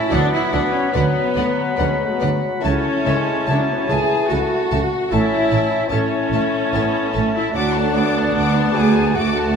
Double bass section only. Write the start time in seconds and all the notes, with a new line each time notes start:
0.12 D2
0.53 D2
0.95 D2
1.36 D2
1.79 D2
2.22 D2
2.65 C#2
3.07 C#2
3.49 C#2
3.90 C#2
4.32 C#2
4.73 C#2
5.13 A1
5.52 A1
5.91 A1
6.32 A1
6.74 A1
7.15 A1
7.55 D2
8.36 D2
9.16 D2